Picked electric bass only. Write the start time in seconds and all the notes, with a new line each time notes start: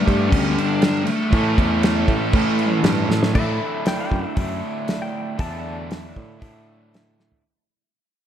0.08 G2
0.32 D2
1.33 A2
1.58 E2
2.08 A2
2.34 A2
2.83 G2
3.09 A2
3.35 A2
4.12 F#2
4.37 F#2
5.39 E2
6.17 A2
6.42 A2